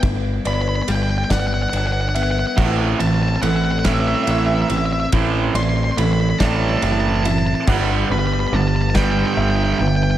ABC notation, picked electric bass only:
X:1
M:6/8
L:1/8
Q:3/8=47
K:Ador
V:1 name="Picked electric bass" clef=bass
G,,, G,,, G,,, G,,, G,,,2 | A,,, A,,, A,,,2 A,,, A,,, | A,,, A,,, A,,, A,,, F,,,2 | G,,, G,,, G,,,2 G,,, G,,, |]